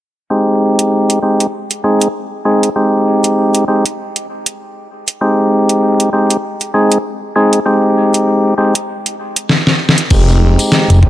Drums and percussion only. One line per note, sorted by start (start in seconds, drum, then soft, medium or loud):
0.79 closed hi-hat medium
1.10 closed hi-hat medium
1.40 closed hi-hat medium
1.71 closed hi-hat soft
2.01 closed hi-hat medium
2.63 closed hi-hat medium
3.24 closed hi-hat medium
3.55 closed hi-hat soft
3.86 closed hi-hat medium
4.16 closed hi-hat medium
4.46 closed hi-hat medium
5.08 closed hi-hat medium
5.69 closed hi-hat medium
6.00 closed hi-hat medium
6.30 closed hi-hat medium
6.61 closed hi-hat soft
6.92 closed hi-hat medium
7.53 closed hi-hat medium
8.14 closed hi-hat medium
8.75 closed hi-hat medium
9.06 closed hi-hat soft
9.36 closed hi-hat medium
9.49 snare medium
9.67 snare medium
9.89 snare medium
9.98 closed hi-hat medium
10.10 kick loud
10.10 crash medium
10.10 tambourine medium
10.28 tambourine soft
10.59 closed hi-hat medium
10.59 tambourine medium
10.72 snare loud
10.72 tambourine medium
10.90 closed hi-hat medium
10.90 tambourine soft
11.03 kick loud